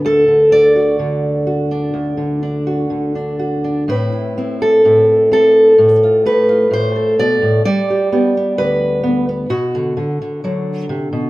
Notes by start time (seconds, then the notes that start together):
Already playing: D3
0.05 D2 A4
0.28 D3
0.52 D5
0.76 F#4
0.99 D3
1.47 F#4
1.71 D4
1.94 D2
2.17 D3
2.43 D4
2.67 F#4
2.90 D3
3.15 D4
3.39 F#4
3.64 D4
3.88 A2 C4 E4 B4
4.12 E4
4.38 C4 E4
4.62 A4
4.85 A2 E4
5.32 C4 A4
5.78 A2
6.03 F4
6.26 A3 B4
6.49 F4
6.71 A2 C5
6.96 A4
7.19 B2 D5
7.42 A2
7.65 G3 D5
7.90 G4
8.12 B3 G4
8.37 B3
8.58 D2 B4
9.04 B3
9.29 B3
9.50 B2 F#4
9.75 D3
9.97 D3
10.22 D3
10.44 D3 F#3
10.89 C3
11.13 B2